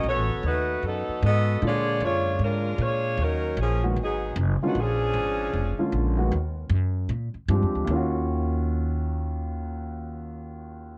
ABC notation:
X:1
M:4/4
L:1/8
Q:"Swing" 1/4=153
K:Ebm
V:1 name="Saxophone section"
[=B,^F=Ad]2 [=A,^DF=B]2 [^F,B,DA]2 [B,FA^d]2 | [A,F^c=d]2 [A,=DFc]2 [A,DFB]2 [A,DFc]2 | [G,DEB]2 [F,B,DA] z [G,CEA]2 z [E,A,CG] | [F,^C=DA]6 z2 |
z8 | z8 | z8 |]
V:2 name="Grand piano"
z8 | [=D,A,B,=DF]4- [D,A,B,DF] z3 | z3 [E,A,B,CG] z3 [=D,A,B,_DF] | z4 z [=D,A,B,^CF]2 [E,A,B,_CG] |
z6 [F,A,=C=D=G]2 | [E,,E,DFG]8- | [E,,E,DFG]8 |]
V:3 name="Upright bass" clef=bass
(3=B,,, =A,,, ^F,,, ^D,,2 ^F,, z _A,,2 | B,,2 G,,2 A,,2 B,,2 | E,,2 B,,,2 A,,,2 G,,, z | B,,,2 A,,,2 F,,, z B,,,2 |
E,,2 G,,2 B,, z (3=G,, F,, =D,, | E,,8- | E,,8 |]